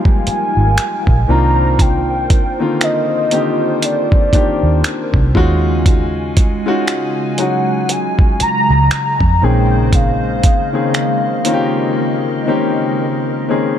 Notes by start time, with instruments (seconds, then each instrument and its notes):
Already playing: grand piano F3 G3 G#3 A#3 D#4 A#4, analog synth pad D#4 F4 A#4 F5, soft synth lead G#5
0.05 kick
0.27 muted fingered electric bass stroke, closed hi-hat
0.57 fingered electric bass G#1
0.78 finger snap, closed hi-hat
1.07 fingered electric bass A#1, kick
1.28 fingered electric bass C2, grand piano D#3 A#3 C4 D4 F4, analog synth pad F4 C5, soft synth lead A#5
1.79 soft synth lead G5, kick, closed hi-hat
2.30 kick, closed hi-hat
2.59 grand piano D3 D#3 A#3 C4 F4
2.81 soft synth lead D#5, finger snap, closed hi-hat
3.31 grand piano D3 D#3 A#3 C4 G4, closed hi-hat
3.82 soft synth lead D5, closed hi-hat
4.12 kick
4.33 grand piano D#3 A#3 C4 D4 G4, muted fingered electric bass stroke, kick, closed hi-hat
4.63 fingered electric bass D#2
4.84 finger snap, closed hi-hat
5.14 fingered electric bass C2, kick
5.35 fingered electric bass D#2, analog synth pad C#3 G#3 G#5, grand piano G#3 C#4 D#4 F4 F#4, kick
5.86 kick, closed hi-hat
6.37 kick, closed hi-hat
6.66 grand piano G#3 C#4 D#4 F4 F#4
6.88 finger snap, closed hi-hat
7.38 grand piano F#3 G#3 C#4 D#4 F#4, soft synth lead F#5, closed hi-hat
7.89 soft synth lead G#5, closed hi-hat
8.19 kick
8.40 soft synth lead A#5, muted fingered electric bass stroke, closed hi-hat
8.70 fingered electric bass C#2
8.91 finger snap, muted fingered electric bass stroke, closed hi-hat
9.20 fingered electric bass F2, kick
9.42 fingered electric bass A#1, grand piano D#3 A#3 C4 C#4 G#4, analog synth pad C5 D#5, soft synth lead G5
9.93 soft synth lead F5, kick, closed hi-hat
10.43 kick, closed hi-hat
10.73 grand piano D#3 A#3 C4 C#4 G#4
10.94 finger snap, closed hi-hat
11.45 grand piano D#3 A#3 C4 C#4 F4, analog synth pad A#4, closed hi-hat
11.54 grand piano G4
12.47 grand piano D#3 A#3 C4 C#4 G4
13.48 grand piano D#3 A#3 C4 C#4 G#4